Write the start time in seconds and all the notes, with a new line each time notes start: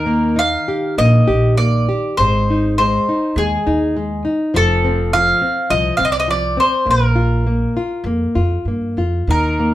Already playing: D#2 D#3 A#4
0.06 A#3
0.36 D#4 F5
0.68 G4
0.98 A#1 A#3 D#5
1.28 A#1 G4
1.57 A#3 D5
1.89 G4
2.17 G#1 G#3 C5
2.50 D#4
2.78 G#3 C5
3.09 D#4
3.36 D#2 G#3 G#4
3.67 D#2 D#4
3.97 G#3
4.25 D#4
4.54 F1 F3 A4
4.85 C4
5.13 F3 F5
5.42 C4
5.70 C2 F3 D#5
5.97 C2 C4 F5
6.05 D#5
6.12 D5
6.20 D#5
6.28 F3 D5
6.57 C4 C5
6.86 A#1 A#3
6.91 A#4
7.15 F4
7.47 A#3
7.77 F4
8.04 F2 A#3
8.35 F2 F4
8.65 G2 A#3
8.97 F2 F4
9.27 D#2 D#3 A#4
9.60 A#3